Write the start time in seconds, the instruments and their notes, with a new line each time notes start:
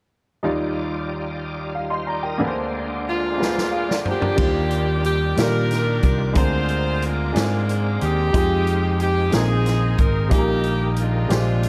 0.43 grand piano D#2 D#3 G3 D#4 F4 D5, tonewheel organ G3 D#4 F4 D5
1.75 grand piano F5
1.90 tonewheel organ C5 F5, grand piano D#5 C6
2.07 grand piano D5 A#5, tonewheel organ D5 G5
2.23 grand piano A#4 G5, tonewheel organ A#4 D#5
2.38 grand piano D2 D3 A#3 D4 G#4 B4
2.43 tonewheel organ D3 G#3 A#3 D4 C5
2.48 grand piano C5
3.09 saxophone section G#3 A#3 F4
3.38 grand piano A#3 D4 G#4 B4
3.42 snare
3.47 grand piano C5
3.58 snare
3.72 grand piano G#4 F5, tonewheel organ D5
3.89 grand piano F4 D5, snare
4.05 saxophone section A#3 D4 G4, grand piano C5, tonewheel organ G5, floor tom
4.21 grand piano D4 A#4, floor tom
4.36 fingered electric bass D#2, grand piano D#3 G3 D4 F4 C5, kick, crash
4.41 tonewheel organ D#3 G3 F4 D5
4.45 grand piano D5
4.71 closed hi-hat
5.04 saxophone section G4, closed hi-hat
5.36 fingered electric bass A#2, grand piano D#3 G3 F4 D5, saxophone section D4 G4 A#4, snare, closed hi-hat
5.71 snare, closed hi-hat
6.03 fingered electric bass C2, saxophone section A#4, kick, closed hi-hat
6.33 fingered electric bass D2, grand piano D3 G#3 C4 D4 A#4, tonewheel organ G#3 C4 A#4 D5, saxophone section F4 G#4 C5, kick, closed hi-hat
6.69 closed hi-hat
7.02 saxophone section G#3 A#3 F4, closed hi-hat
7.32 fingered electric bass G#2, grand piano G#3 C4 D4 G#4, closed hi-hat
7.37 snare
7.69 closed hi-hat
8.01 fingered electric bass D#2, saxophone section C4 D#4 G4, closed hi-hat
8.32 fingered electric bass F2, tonewheel organ F3 G#3 D#4 G4, grand piano G#3 D#4 F4 G4, kick, closed hi-hat
8.67 closed hi-hat
9.00 saxophone section G4, closed hi-hat
9.30 fingered electric bass A#1, grand piano A#2 G#3 C4 D4 A#4, saxophone section C4 D#4 G#4, snare, closed hi-hat
9.35 tonewheel organ D#3 A#3 C4 G4, grand piano D#4
9.42 tonewheel organ G#4
9.66 snare, closed hi-hat
9.98 fingered electric bass G#1, saxophone section A#4, kick, closed hi-hat
10.29 fingered electric bass A#1, grand piano A#2 G3 A#3 D#4 G#4, saxophone section A#3 D#4 G4, kick, closed hi-hat
10.33 tonewheel organ D#3 A#3 G4
10.38 grand piano A#4
10.64 closed hi-hat
10.96 saxophone section G#3 D4 F4, closed hi-hat
11.28 fingered electric bass A#1, grand piano A#2 G#3 D4 G4 C5, tonewheel organ C3 G#3 G4, snare, closed hi-hat
11.32 tonewheel organ C4
11.63 closed hi-hat